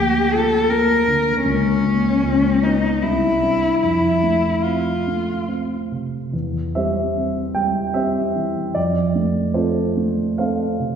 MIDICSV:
0, 0, Header, 1, 3, 480
1, 0, Start_track
1, 0, Key_signature, -1, "major"
1, 0, Tempo, 754717
1, 920, Time_signature, 3, 2, 24, 8
1, 920, Tempo, 791557
1, 2360, Tempo, 834492
1, 4280, Tempo, 798935
1, 5720, Tempo, 823045
1, 6536, End_track
2, 0, Start_track
2, 0, Title_t, "Cello"
2, 0, Program_c, 0, 42
2, 0, Note_on_c, 0, 67, 61
2, 202, Note_on_c, 0, 69, 59
2, 212, Note_off_c, 0, 67, 0
2, 446, Note_on_c, 0, 70, 61
2, 455, Note_off_c, 0, 69, 0
2, 908, Note_off_c, 0, 70, 0
2, 911, Note_on_c, 0, 61, 61
2, 1641, Note_on_c, 0, 63, 48
2, 1650, Note_off_c, 0, 61, 0
2, 1876, Note_on_c, 0, 64, 51
2, 1885, Note_off_c, 0, 63, 0
2, 2359, Note_off_c, 0, 64, 0
2, 2362, Note_on_c, 0, 64, 46
2, 2831, Note_on_c, 0, 65, 35
2, 2839, Note_off_c, 0, 64, 0
2, 3310, Note_off_c, 0, 65, 0
2, 6536, End_track
3, 0, Start_track
3, 0, Title_t, "Grand piano"
3, 0, Program_c, 1, 0
3, 0, Control_c, 1, 64, 127
3, 0, Note_on_c, 1, 38, 36
3, 0, Note_on_c, 1, 53, 28
3, 0, Note_on_c, 1, 58, 30
3, 107, Note_off_c, 1, 53, 0
3, 208, Note_on_c, 1, 65, 31
3, 349, Note_off_c, 1, 58, 0
3, 448, Note_on_c, 1, 58, 30
3, 589, Note_off_c, 1, 65, 0
3, 686, Note_on_c, 1, 50, 27
3, 826, Note_off_c, 1, 58, 0
3, 895, Note_off_c, 1, 38, 0
3, 922, Note_off_c, 1, 50, 0
3, 924, Note_on_c, 1, 37, 36
3, 929, Control_c, 1, 64, 0
3, 1040, Control_c, 1, 64, 127
3, 1156, Note_on_c, 1, 58, 24
3, 1158, Note_on_c, 1, 61, 28
3, 1370, Note_off_c, 1, 58, 0
3, 1371, Note_off_c, 1, 61, 0
3, 1380, Note_off_c, 1, 37, 0
3, 1398, Note_on_c, 1, 37, 36
3, 1404, Control_c, 1, 64, 0
3, 1496, Control_c, 1, 64, 127
3, 1638, Note_on_c, 1, 59, 25
3, 1641, Note_on_c, 1, 61, 28
3, 1856, Note_off_c, 1, 59, 0
3, 1858, Note_off_c, 1, 61, 0
3, 1868, Note_off_c, 1, 37, 0
3, 1882, Note_on_c, 1, 36, 30
3, 1889, Control_c, 1, 64, 0
3, 1989, Control_c, 1, 64, 127
3, 2119, Note_on_c, 1, 60, 21
3, 2122, Note_on_c, 1, 62, 22
3, 2337, Note_off_c, 1, 60, 0
3, 2338, Note_off_c, 1, 62, 0
3, 2348, Note_off_c, 1, 36, 0
3, 2366, Note_on_c, 1, 41, 27
3, 2372, Control_c, 1, 64, 0
3, 2487, Control_c, 1, 64, 127
3, 2597, Note_on_c, 1, 57, 20
3, 2841, Note_on_c, 1, 60, 22
3, 2979, Note_off_c, 1, 57, 0
3, 3083, Note_on_c, 1, 57, 22
3, 3219, Note_off_c, 1, 60, 0
3, 3315, Note_on_c, 1, 60, 21
3, 3463, Note_off_c, 1, 57, 0
3, 3565, Note_on_c, 1, 48, 19
3, 3706, Note_off_c, 1, 60, 0
3, 3781, Note_off_c, 1, 41, 0
3, 3805, Note_off_c, 1, 48, 0
3, 3805, Note_on_c, 1, 40, 33
3, 3812, Control_c, 1, 64, 0
3, 3932, Control_c, 1, 64, 127
3, 4046, Note_on_c, 1, 76, 53
3, 4052, Note_on_c, 1, 67, 41
3, 4052, Note_on_c, 1, 72, 40
3, 4054, Note_on_c, 1, 55, 27
3, 4283, Note_on_c, 1, 60, 27
3, 4431, Note_off_c, 1, 55, 0
3, 4502, Note_off_c, 1, 67, 0
3, 4502, Note_off_c, 1, 72, 0
3, 4512, Note_on_c, 1, 79, 58
3, 4521, Note_on_c, 1, 55, 29
3, 4523, Note_off_c, 1, 76, 0
3, 4667, Note_off_c, 1, 60, 0
3, 4749, Note_on_c, 1, 76, 56
3, 4754, Note_on_c, 1, 67, 42
3, 4756, Note_on_c, 1, 60, 26
3, 4757, Note_off_c, 1, 79, 0
3, 4758, Note_on_c, 1, 72, 44
3, 4906, Note_off_c, 1, 55, 0
3, 4996, Note_on_c, 1, 52, 25
3, 5145, Note_off_c, 1, 60, 0
3, 5216, Note_off_c, 1, 67, 0
3, 5218, Note_off_c, 1, 72, 0
3, 5222, Note_off_c, 1, 40, 0
3, 5233, Note_on_c, 1, 74, 61
3, 5238, Note_off_c, 1, 76, 0
3, 5240, Note_off_c, 1, 52, 0
3, 5240, Note_on_c, 1, 41, 36
3, 5253, Control_c, 1, 64, 0
3, 5340, Control_c, 1, 64, 127
3, 5479, Note_on_c, 1, 57, 26
3, 5712, Note_on_c, 1, 72, 53
3, 5714, Note_off_c, 1, 74, 0
3, 5715, Note_on_c, 1, 65, 42
3, 5718, Note_on_c, 1, 60, 28
3, 5721, Note_on_c, 1, 69, 40
3, 5863, Note_off_c, 1, 57, 0
3, 5963, Note_on_c, 1, 57, 29
3, 6115, Note_off_c, 1, 60, 0
3, 6187, Note_off_c, 1, 65, 0
3, 6190, Note_off_c, 1, 69, 0
3, 6198, Note_off_c, 1, 72, 0
3, 6202, Note_on_c, 1, 77, 54
3, 6207, Note_on_c, 1, 72, 42
3, 6210, Note_on_c, 1, 69, 40
3, 6211, Note_on_c, 1, 60, 28
3, 6353, Note_off_c, 1, 57, 0
3, 6443, Note_on_c, 1, 48, 26
3, 6536, Note_off_c, 1, 41, 0
3, 6536, Note_off_c, 1, 48, 0
3, 6536, Note_off_c, 1, 60, 0
3, 6536, Note_off_c, 1, 69, 0
3, 6536, Note_off_c, 1, 72, 0
3, 6536, Note_off_c, 1, 77, 0
3, 6536, End_track
0, 0, End_of_file